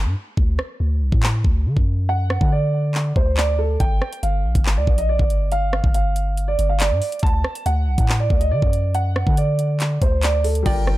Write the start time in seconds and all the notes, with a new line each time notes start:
0.05 G2
0.37 D2, kick
0.59 cross-stick
0.80 D2
1.02 C2
1.12 A2, kick
1.23 clap
1.44 D2, kick
1.66 D3
1.77 F#2, kick
2.09 F#5
2.30 cross-stick
2.41 D3, kick
2.52 D5
2.95 clap
3.16 D2 C5, kick
3.37 D5, clap
3.59 A4
3.80 G1 G5, kick, closed hi-hat
4.02 cross-stick
4.13 closed hi-hat
4.23 G1 F5, closed hi-hat
4.44 A#1
4.55 G1, kick, closed hi-hat
4.66 clap
4.76 D2 D5
4.87 A#1, kick
4.98 D#5, closed hi-hat
5.09 D5
5.19 G1, kick
5.30 closed hi-hat
5.52 F5, closed hi-hat
5.73 cross-stick
5.84 G1, kick
5.94 F5, closed hi-hat
6.16 closed hi-hat
6.37 closed hi-hat
6.48 D5
6.59 G1, closed hi-hat
6.69 F5
6.80 D5, clap, closed hi-hat
6.91 G2
7.02 open hi-hat
7.12 closed hi-hat
7.19 D2 A5, kick, closed hi-hat
7.27 closed hi-hat
7.44 cross-stick
7.55 closed hi-hat
7.66 D2 F#5, closed hi-hat
7.87 C2
7.98 A2, kick, closed hi-hat
8.09 clap
8.20 D5
8.30 D2, kick
8.40 D#5, closed hi-hat
8.51 D3 D5
8.62 F#2, kick
8.73 closed hi-hat
8.95 F#5, closed hi-hat
9.16 cross-stick
9.27 D3, kick
9.37 D5, closed hi-hat
9.59 closed hi-hat
9.80 clap, closed hi-hat
10.02 D2 C5, kick, closed hi-hat
10.23 D5, clap, closed hi-hat
10.44 A4, open hi-hat
10.55 closed hi-hat
10.63 G1 G3 F4 D5 G5, kick, closed hi-hat, crash, impact
10.69 A#4
10.87 cross-stick